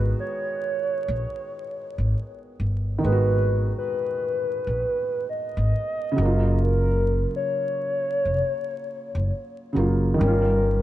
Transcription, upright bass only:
0.00 0.11 G#1 loud
1.08 1.23 A#1 medium
1.98 2.13 G#1 medium
2.60 3.00 G1 medium
3.04 3.70 G#1 medium
4.67 4.82 A#1 medium
5.57 5.71 G#1 medium
6.18 7.23 F#1 loud
8.25 8.40 F1 medium
9.15 9.29 F#1 medium
9.76 10.16 F#1 medium
10.21 10.82 G1 loud

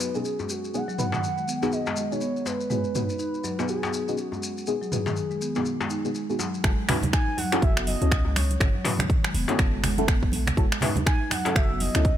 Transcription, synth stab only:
0.00 0.11 B3 medium
0.00 0.11 D#4 medium
0.00 0.11 F#4 medium
0.00 0.11 G#4 loud
0.15 0.23 B3 medium
0.15 0.23 D#4 medium
0.15 0.23 F#4 medium
0.15 0.23 G#4 medium
0.74 0.82 B3 medium
0.74 0.82 D#4 medium
0.74 0.82 F#4 medium
0.74 0.82 G#4 medium
0.99 1.06 B3 medium
0.99 1.06 D#4 medium
0.99 1.06 F#4 medium
0.99 1.06 B4 medium
1.62 2.08 B3 medium
1.62 2.08 D#4 medium
1.62 2.08 F#4 medium
1.62 2.08 G#4 loud
2.12 2.20 B3 medium
2.12 2.20 D#4 medium
2.12 2.20 F#4 medium
2.12 2.20 G#4 medium
2.71 2.78 B3 medium
2.71 2.78 D#4 medium
2.71 2.78 F#4 medium
2.71 2.78 G#4 medium
2.95 3.03 B3 medium
2.95 3.03 D#4 medium
2.95 3.03 F#4 medium
2.95 3.03 B4 medium
3.59 4.05 B3 medium
3.59 4.05 D#4 medium
3.59 4.05 F#4 medium
3.59 4.05 G#4 loud
4.08 4.17 B3 medium
4.08 4.17 D#4 medium
4.08 4.17 F#4 medium
4.08 4.17 G#4 medium
4.67 4.75 B3 medium
4.67 4.75 D#4 medium
4.67 4.75 F#4 medium
4.67 4.75 G#4 medium
4.92 5.00 B3 medium
4.92 5.00 D#4 medium
4.92 5.00 F#4 medium
4.92 5.00 B4 medium
5.56 6.01 B3 medium
5.56 6.01 D#4 medium
5.56 6.01 F#4 medium
5.56 6.01 G#4 medium
6.05 6.10 B3 medium
6.05 6.10 D#4 medium
6.05 6.10 F#4 medium
6.05 6.10 G#4 loud
6.30 6.35 B3 medium
6.30 6.35 D#4 medium
6.30 6.35 F#4 medium
6.30 6.35 G#4 loud
6.64 6.72 C#4 medium
6.64 6.72 E4 medium
6.64 6.72 F#4 medium
6.64 6.72 A4 loud
6.89 6.96 C#4 medium
6.89 6.96 E4 medium
6.89 6.96 F#4 medium
6.89 6.96 B4 medium
7.52 7.98 C#4 medium
7.52 7.98 E4 medium
7.52 7.98 F#4 medium
7.52 7.98 A4 loud
8.01 8.10 C#4 medium
8.01 8.10 E4 medium
8.01 8.10 F#4 medium
8.01 8.10 A4 loud
8.61 8.68 C#4 medium
8.61 8.68 E4 medium
8.61 8.68 F#4 medium
8.61 8.68 A4 medium
8.85 8.93 C#4 medium
8.85 8.93 E4 medium
8.85 8.93 F#4 medium
8.85 8.93 B4 medium
9.49 9.95 C#4 medium
9.49 9.95 E4 medium
9.49 9.95 F#4 medium
9.49 9.95 A4 loud
9.98 10.07 C#4 medium
9.98 10.07 E4 medium
9.98 10.07 F#4 medium
9.98 10.07 A4 loud
10.57 10.65 C#4 medium
10.57 10.65 E4 medium
10.57 10.65 F#4 medium
10.57 10.65 A4 medium
10.82 10.90 C#4 medium
10.82 10.90 E4 medium
10.82 10.90 F#4 medium
10.82 10.90 B4 medium
11.46 11.91 C#4 loud
11.46 11.92 E4 medium
11.46 11.92 F#4 medium
11.46 11.92 A4 loud
11.95 12.03 C#4 medium
11.95 12.03 E4 medium
11.95 12.03 F#4 medium
11.95 12.03 A4 loud

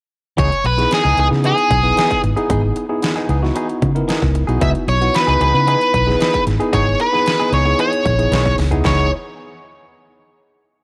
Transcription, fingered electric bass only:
0.38 0.49 C#2 loud
0.64 0.85 B1 medium
1.05 1.15 C#2 medium
1.18 1.28 C#2 medium
1.31 1.52 C#3 medium
1.70 1.91 B1 medium
2.24 2.34 G#1 medium
2.50 2.70 G#1 loud
3.29 3.50 C#2 medium
3.82 4.02 C#3 medium
4.22 4.43 C#2 loud
4.48 4.58 B1 medium
4.61 4.72 C#2 loud
4.88 5.08 B1 medium
5.28 5.38 C#2 medium
5.41 5.51 C#2 medium
5.54 5.75 C#3 medium
5.94 6.14 B1 medium
6.47 6.57 G#1 medium
6.73 6.93 G#1 medium
7.52 7.73 C#2 medium
8.05 8.29 A#1 medium
8.32 8.55 B1 medium
8.59 8.82 C#2 medium
8.85 9.09 C#2 loud

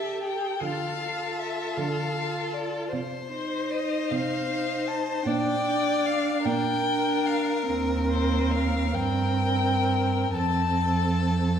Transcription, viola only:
0.00 0.60 G4 soft
0.62 1.00 F4 soft
1.01 2.14 F4 soft
2.16 2.91 F4 soft
3.31 4.47 D#4 soft
4.49 5.24 D#4 soft
5.25 5.64 D4 soft
5.64 6.83 D4 soft
6.85 7.66 D4 medium
7.67 8.90 C4 medium
8.95 10.31 C4 medium
10.33 11.60 C4 soft

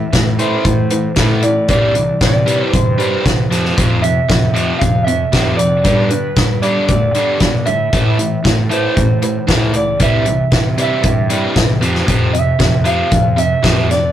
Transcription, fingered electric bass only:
0.13 0.55 A2 medium
0.65 1.07 A2 medium
1.17 1.70 A2 medium
1.69 2.10 C2 medium
2.21 2.63 C3 medium
2.74 3.15 G2 medium
3.26 3.46 C2 medium
3.50 3.71 F2 medium
3.78 4.19 F2 medium
4.30 4.71 F2 medium
4.81 5.23 F2 medium
5.34 5.85 F2 medium
5.85 6.26 G2 medium
6.37 6.78 G3 medium
6.89 7.10 D2 medium
7.15 7.38 D3 medium
7.41 7.64 B2 medium
7.68 7.91 A2 medium
7.93 8.34 A2 medium
8.45 8.86 A2 medium
8.97 9.38 A2 medium
9.48 10.00 C#2 medium
10.00 10.42 C2 medium
10.52 10.94 C3 medium
11.04 11.45 G2 medium
11.56 11.77 C2 medium
11.81 12.02 F2 medium
12.09 12.50 F2 medium
12.60 13.02 F2 medium
13.12 13.54 F2 medium
13.64 14.12 F2 medium

